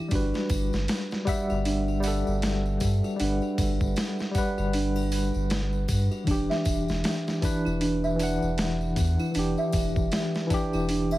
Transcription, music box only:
0.11 D4
0.34 F#4
1.27 G4
1.50 F#4
1.65 D4
1.88 F#4
2.81 G4
3.04 F#4
3.19 D4
3.42 F#4
4.35 G4
4.58 F#4
4.74 D4
4.96 F#4
5.88 G4
6.11 F#4
6.27 D4
6.50 E5
7.42 G4
7.65 E4
7.81 D4
8.04 E5
8.97 G4
9.20 E4
9.35 D4
9.58 E5
10.50 G4
10.74 E4
10.89 D4
11.12 E5

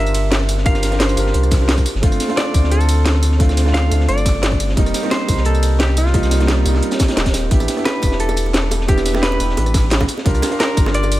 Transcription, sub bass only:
Already playing: G1
1.17 G1
1.34 C2
1.95 G1
2.03 G1
2.54 D2
3.91 D2
4.09 G1
4.77 F1
5.29 C2
6.66 C2
7.17 D#1
7.34 D#1
7.51 A1
8.03 E1
9.40 E1
9.57 A1
10.26 C2
10.77 G1

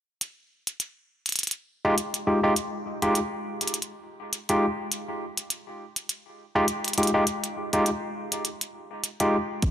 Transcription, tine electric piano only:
1.85 G#3 D#4 F4 G4
2.27 G#3 D#4 F4 G4
2.43 G#3 D#4 F4 G4
3.02 G#3 D#4 F4 G4
4.49 G#3 D#4 F4 G4
6.55 G#3 D#4 F4 G4
6.98 G#3 D#4 F4 G4
7.14 G#3 D#4 F4 G4
7.73 G#3 D#4 F4 G4
9.20 G#3 D#4 F4 G4

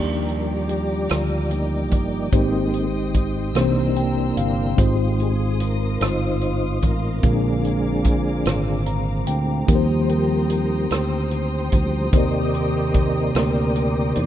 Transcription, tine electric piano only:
Already playing: D#3 A#3 D4 D#4 G4 D5
2.32 G#2 G#3 C4 D#4 G4 C5
3.55 C3 E3 A#3 C4 G4 C5
3.97 G5
4.37 F5
4.76 G#2 G#3 C4 D#4 F4 C5
7.22 A#2 G#3 A#3 D4 F4 A#4
8.87 A#5
9.27 G5
9.66 D#3 A#3 C4 D#4 G4 A#4
9.75 C5
12.12 D#3 A#3 C4 D#4 G4 C5

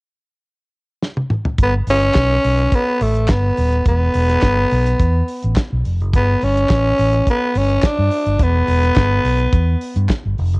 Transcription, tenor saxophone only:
1.63 B3
1.90 C#4
2.75 B3
3.03 A3
3.31 B3
3.88 B3
6.16 B3
6.44 C#4
7.30 B3
7.57 C#4
7.86 D4
8.43 B3

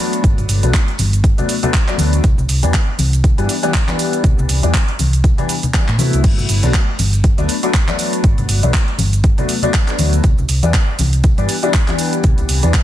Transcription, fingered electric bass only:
0.24 G1
0.38 G1
0.49 G1
0.63 B1
0.99 G1
1.99 D2
2.24 C2
2.38 C2
2.49 C2
2.63 E2
2.99 C2
3.38 G2
4.24 C2
4.38 C2
4.49 C2
4.63 E2
4.99 C2
5.88 A2
5.99 C3
6.13 C2
6.24 G1
6.38 G1
6.49 G1
6.63 B1
6.99 G1
7.38 D2
8.24 G1
8.38 G1
8.49 G1
8.63 B1
8.99 G1
9.99 D2
10.38 C2
10.49 C2
10.63 E2
10.99 C2
11.38 G2
12.24 C2
12.38 C2
12.49 C2
12.63 E2

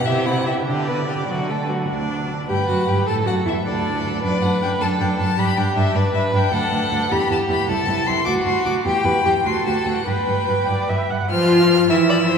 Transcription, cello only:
0.05 C3
0.66 D3
1.28 D3
1.90 D2
2.49 G2
2.68 F#2
2.88 G2
3.08 A2
3.26 F#2
3.46 E2
3.65 D2
4.23 F#2
4.42 F#2
4.61 F#2
4.81 F#2
5.00 F#2
5.20 F#2
5.38 G2
5.57 G2
5.76 G2
5.95 G2
6.14 G2
6.33 G2
6.52 D2
6.72 D2
6.91 D2
7.11 E2
7.30 E2
7.49 E2
7.69 C2
7.88 C2
8.07 C2
8.27 D2
8.46 D2
8.65 D2
8.85 E2
9.05 E2
9.26 E2
9.45 D2
9.66 D2
9.87 D2
10.06 G2
10.28 G2
10.48 G2
10.69 G2
10.90 G2
11.11 G2
11.31 F3
11.90 E3

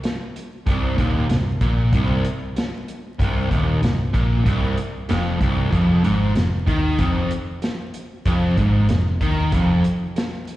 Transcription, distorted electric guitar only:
0.66 C2
0.98 D#2
1.29 C2
1.61 A#2
1.93 C2
3.19 C2
3.50 D#2
3.83 C2
4.13 A#2
4.45 C2
5.09 F2
5.41 C2
5.72 F2
6.04 G#2
6.36 F2
6.67 D#3
6.99 F2
8.26 F2
8.58 G#2
8.89 F2
9.21 D#3
9.53 F2

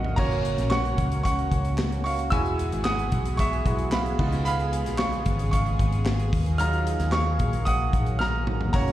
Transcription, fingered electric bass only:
Already playing: A#1
0.18 F#1
0.58 A#1
0.98 C#2
1.52 C#2
2.32 E1
2.72 G#1
3.12 B1
3.66 B1
4.19 C#2
4.86 A#1
5.26 G#1
5.80 G#1
6.33 D#2
7.00 D#2
7.40 A#1
7.93 A#1
8.74 F#1

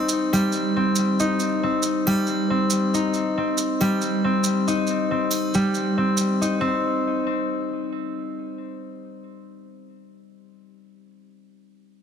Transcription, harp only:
Already playing: C4 D#4
0.33 G3
0.76 C4
1.20 D#4
1.63 C4
2.07 G3
2.50 C4
2.94 D#4
3.37 C4
3.81 G3
4.24 C4
4.68 D#4
5.11 C4
5.54 G3
5.98 C4
6.41 D#4
6.61 C4

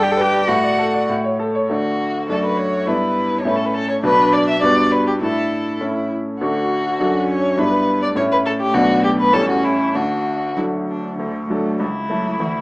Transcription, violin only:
Already playing: G5
0.48 F#5
1.70 F#4
2.29 A4
2.45 B4
2.58 C#5
2.87 B4
3.38 C#5
3.47 B4
3.56 A4
3.65 B4
3.74 A4
3.89 C#5
4.04 B4
4.33 D5
4.49 E5
4.62 D5
4.91 B4
5.07 G4
5.21 A4
6.41 F#4
7.30 C#5
7.59 B4
8.02 D5
8.16 C#5
8.32 B4
8.45 A4
8.61 G4
8.74 F#4
9.04 G4
9.20 B4
9.33 A4
9.49 F#4
9.64 E4
9.95 F#4
11.79 E4

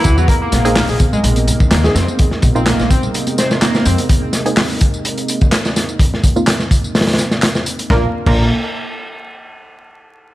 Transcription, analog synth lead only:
0.05 E3
0.18 F#3
0.29 A#3
0.42 A#3
0.76 A#3
0.89 G#4
1.13 G#3
1.72 A#3
1.84 G#4
1.95 C4
2.56 C4
2.67 A#3
2.79 A#3
2.90 C4
3.38 C4
3.62 A#3
3.86 C4
7.90 A#3
8.27 A#3

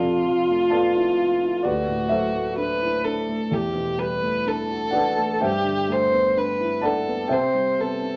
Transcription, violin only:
Already playing: F4
1.65 F#4
2.58 B4
3.04 A4
3.54 G4
3.99 B4
4.48 A4
5.45 G4
5.92 C5
6.38 B4
6.86 A4
7.33 C5
7.81 A4

